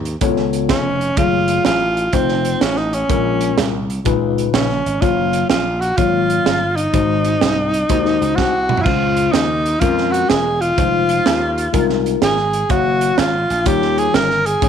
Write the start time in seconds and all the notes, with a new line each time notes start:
Already playing: D#2
0.05 closed hi-hat
0.21 C#2 C#3 B3 E4 A4 C#5, kick, closed hi-hat
0.27 F4
0.37 snare
0.53 closed hi-hat
0.69 F1 C#4, kick, snare, closed hi-hat
1.01 closed hi-hat
1.17 F#1 F#3 A3 F4 G#4 C#5, kick, closed hi-hat
1.48 closed hi-hat
1.65 A1 F4, snare, closed hi-hat
1.97 closed hi-hat
2.13 F1 A3 C4 D#4 F4 C5, kick, closed hi-hat
2.29 snare
2.45 closed hi-hat
2.61 A1 C#4, snare, closed hi-hat
2.76 D#4, snare
2.93 C#4, closed hi-hat
3.09 A#1 A#2 G#3 C#4 F4 A#4, kick, closed hi-hat
3.41 closed hi-hat
3.58 C2, snare, closed hi-hat
3.90 closed hi-hat
4.05 C#2 A#2 C#3 D#4 F4 B4, kick, closed hi-hat
4.38 closed hi-hat
4.54 A#1 C#4, snare, closed hi-hat
4.69 snare
4.86 G#1, closed hi-hat
5.01 F#1 F#3 A#3 F4 C#5, kick, closed hi-hat
5.33 closed hi-hat
5.49 A#1 F4, snare, closed hi-hat
5.80 F#4, closed hi-hat
5.97 G#1 F#3 A#3 F4 C#5, kick, closed hi-hat
6.30 closed hi-hat
6.46 G1, snare, closed hi-hat
6.76 D#4, closed hi-hat
6.93 G#1 G#2 G#3 D#4 F#4 C5, kick, closed hi-hat
7.25 closed hi-hat
7.41 C2, snare, closed hi-hat
7.74 closed hi-hat
7.89 D#2 G#3 D#4 F#4 C5, kick, closed hi-hat
8.05 snare
8.21 C#2, closed hi-hat
8.36 C2 F#4, kick, snare
8.69 mid tom
8.77 E4, floor tom
8.83 C#2 C#3 G#3 C#4 E4 F4 C5, kick, crash
8.92 F4
9.17 closed hi-hat
9.32 D#2 D#4, snare, closed hi-hat
9.66 closed hi-hat
9.80 F2 G#3 C#4 F4 A#4, kick, closed hi-hat
9.98 snare
10.12 F#4, closed hi-hat
10.29 E1 G#4, snare, closed hi-hat
10.61 F4, closed hi-hat
10.77 F1 G#3 D#4 F4 C5, kick, closed hi-hat
11.09 closed hi-hat
11.26 D#2, snare, closed hi-hat
11.58 closed hi-hat
11.73 C2 G#3 D#4 F4 A#4, kick, closed hi-hat
11.89 snare
12.06 closed hi-hat
12.22 G#1 G#4, snare, closed hi-hat
12.37 snare
12.53 closed hi-hat
12.69 F#1 A#3 F#4 C#5 F5, kick, closed hi-hat
13.01 closed hi-hat
13.18 G#1 F4, snare, closed hi-hat
13.50 A#1, closed hi-hat
13.65 D#2 D#3 G3 D#4 F4 G4 C#5, kick, closed hi-hat
13.82 snare
13.98 G#4, closed hi-hat
14.14 G1 A#4, snare, closed hi-hat
14.30 snare
14.46 G#4, closed hi-hat
14.62 G#1 G#2 G#3 C#4 D#4 C#5, kick, closed hi-hat